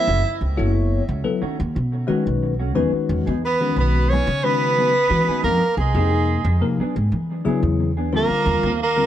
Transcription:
Already playing: E4 E5
0.06 F#1 E3 A3 C#4 F#4
0.24 muted clean electric guitar stroke
0.41 C#2, muted clean electric guitar stroke
0.57 F#1 F#3 A3 B3 C#4 E4 F#4 A4 C#5
0.74 muted clean electric guitar stroke
1.09 C#2
1.24 F#3 B3 E4 A4 B4, muted clean electric guitar stroke
1.42 D#3 A3 C#4 F#4, muted upright bass stroke
1.60 D#2, muted clean electric guitar stroke
1.75 B2, muted clean electric guitar stroke
2.07 D#3 G#3 A3 C#4 F#4 B4, muted upright bass stroke
2.26 B1, muted clean electric guitar stroke
2.43 muted clean electric guitar stroke
2.59 A3 C#4 F#4
2.75 E2 D#3 F#3 G#3 B3 C#4 D#4 F#4 G#4 B4
2.93 muted upright bass stroke, muted clean electric guitar stroke
3.09 E2, muted clean electric guitar stroke
3.27 E2 B3 D#4 G#4
3.44 B3 B4, muted clean electric guitar stroke
3.61 D#3 G#3 C#4 F#4 B4
3.76 B1 B3 B4
3.94 muted clean electric guitar stroke
4.10 F#3 B3 D#4 G#4 C#5
4.14 C#4
4.27 C#3, muted clean electric guitar stroke
4.44 D#3 G#3 B3 C#4 F#4 B4, muted clean electric guitar stroke
4.77 F#3 B3 D#4 G#4
4.95 muted clean electric guitar stroke
5.09 D#3 E3 G#3 C#4 F#4 B4, muted clean electric guitar stroke
5.28 B3 D#4 G#4, muted upright bass stroke
5.43 F2 G#3 A#3 C4 D#4 G4 A#4
5.63 muted clean electric guitar stroke
5.77 C2 G#3 G#4, muted clean electric guitar stroke
5.95 F2 C3 F3 A#3 C4 D#4 G4 G#4
6.13 muted clean electric guitar stroke
6.45 F2
6.61 C3 F3 A#3 D#4 A#4, muted clean electric guitar stroke
6.78 F#3 B3 D4 G#4, muted upright bass stroke
6.96 G#2, muted clean electric guitar stroke
7.12 E3, muted clean electric guitar stroke
7.45 C#3 F#3 B3 D4 E4 G#4, muted upright bass stroke
7.63 E2
7.79 muted clean electric guitar stroke
7.97 B3 D4 G#4
8.13 D#2 D3 F3 G3 A#3 C4 F4 G4 A#4
8.17 A#3
8.30 muted clean electric guitar stroke, muted upright bass stroke
8.46 D#2, muted clean electric guitar stroke
8.63 D#2 A#3 C4 G4
8.81 A#3 A#4, muted clean electric guitar stroke
8.96 D3 G3 C4 F4 A#4

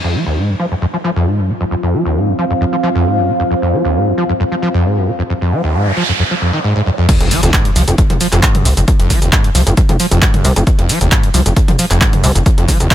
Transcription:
Already playing: F4 D#5
0.04 F2
0.15 F3
0.26 D#2
0.37 G#2
0.49 F#2
0.59 F3
0.69 F2 C5
0.82 F2
0.93 F3
1.04 F3
1.16 F2 F5
1.27 G#2
1.38 F#2
1.49 C3
1.61 F2
1.71 F2
1.83 F2
1.94 F3
2.05 D#2
2.16 G#2
2.28 F#2
2.38 F3
2.50 F2
2.61 F2
2.73 F3
2.83 F3
2.95 F2
3.06 G#2
3.17 F#2
3.28 C3
3.40 F2
3.51 F2
3.62 F2
3.73 F3
3.85 D#2
3.95 G#2
4.07 F#2
4.18 F3
4.29 F2
4.40 F2
4.52 F3
4.62 F3
4.74 F2
4.85 G#2
4.97 F#2
5.07 C3
5.19 F2
5.30 F2, noise sweep
5.41 F2
5.52 F3
5.64 D#2
5.74 G#2
5.86 F#2
5.97 F3
6.09 F2
6.19 F2
6.31 F3
6.42 F2
6.53 D#3
6.64 G#2
6.76 G#2
6.86 F2
6.98 F2
7.09 kick, closed hi-hat, crash, impact, shaker
7.21 F1 F2, closed hi-hat
7.31 F3, open hi-hat, shaker
7.43 F1 D#2, closed hi-hat, shaker
7.54 G#2, kick, clap, closed hi-hat, shaker
7.65 F#2, closed hi-hat
7.76 C2 F3, open hi-hat, shaker
7.88 F1 F2, closed hi-hat, shaker
7.98 F2, kick, closed hi-hat, shaker
8.10 F1 F3, closed hi-hat, mid tom
8.21 F3, open hi-hat, shaker
8.32 F1 F2, clap, closed hi-hat, shaker
8.43 G#2, kick, clap, closed hi-hat, shaker
8.55 F#2, closed hi-hat, mid tom
8.65 C2 C3, open hi-hat, shaker
8.77 F1 F2, closed hi-hat, shaker
8.88 F2, kick, closed hi-hat, shaker
8.99 F1 F2, closed hi-hat
9.10 F3, kick, open hi-hat, shaker
9.22 F1 D#2, closed hi-hat, shaker
9.33 G#2, kick, clap, closed hi-hat, shaker
9.44 F#2, closed hi-hat
9.55 C2 F3, open hi-hat, shaker
9.67 F1 F2, closed hi-hat, shaker
9.77 F2, kick, closed hi-hat, shaker
9.89 F1 F3, closed hi-hat, mid tom
10.00 F3, open hi-hat, shaker
10.11 F1 F2, closed hi-hat, shaker
10.22 G#2, kick, clap, closed hi-hat, shaker
10.34 F#2, closed hi-hat, mid tom
10.44 C2 C3, open hi-hat, shaker
10.56 F1 F2, closed hi-hat, shaker
10.67 F2, kick, closed hi-hat, shaker
10.79 F1 F2, closed hi-hat
10.89 F3, open hi-hat, shaker
11.01 F1 D#2, closed hi-hat, shaker
11.12 G#2, kick, clap, closed hi-hat, shaker
11.23 F#2, closed hi-hat
11.34 C2 F3, open hi-hat, shaker
11.46 F1 F2, closed hi-hat, shaker
11.56 F2, kick, closed hi-hat, shaker
11.68 F1 F3, closed hi-hat, mid tom
11.79 F3, open hi-hat, shaker
11.90 F1 F2, clap, closed hi-hat, shaker
12.01 G#2, kick, clap, closed hi-hat, shaker
12.13 F#2, closed hi-hat, mid tom
12.24 C2 C3, open hi-hat, shaker
12.35 F1 F2, closed hi-hat, shaker
12.46 F2, kick, closed hi-hat, shaker
12.58 F1 F2, closed hi-hat
12.68 F3, kick, open hi-hat, shaker
12.80 F1 D#2, closed hi-hat, shaker
12.91 G#2, kick, clap, closed hi-hat, shaker

